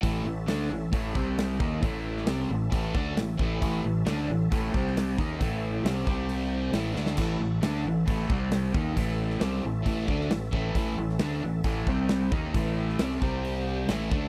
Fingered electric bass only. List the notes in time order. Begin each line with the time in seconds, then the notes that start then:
0.03 A1
0.25 A1
0.48 D2
0.71 A1
0.92 A1
1.16 C2
1.59 D#2
1.83 A1
2.28 C2
2.50 A1
2.73 A1
2.94 D2
3.17 A1
3.39 A1
3.62 A1
3.84 A1
4.07 D2
4.28 A1
4.52 A1
4.75 C2
5.18 D#2
5.41 A1
5.84 C2
6.07 C2
6.74 A1
6.95 D2
7.18 A1
7.40 A1
7.62 D2
7.85 A1
8.08 A1
8.30 C2
8.74 D#2
8.97 A1
9.41 C2
9.65 A1
9.86 A1
10.08 D2
10.31 A1
10.53 A1
10.75 A1
10.98 A1
11.20 D2
11.43 A1
11.64 A1
11.87 C2
12.32 D#2
12.54 A1
13.00 C2
13.22 C2
13.89 A1
14.12 D2